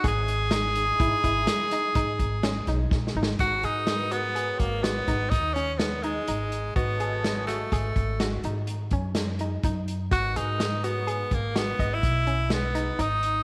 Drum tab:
HH |x--x--x--x--x--x--x--x--x--x--x--x--------|x--x--x--x--x--x--x--x--x--x--x--x--x--x--|x--x--x--x--x--x--x--x--x--x--x--x--x--x--|x--x--x--x--x--x--x--x--x--x--x--x--x--x--|
SD |------o-----------o--o--------o--o--o-o-o-|------o-----------o--o-----o--o-----------|------o--o--------o-----------o-----------|---o--o-----------o-----------o--o--------|
BD |o-----------o--o--------o--o--------o-----|o--------------o-----o--o-----------------|o-----------o--o-----------o--------o-----|o--------------o-----o--o-----------------|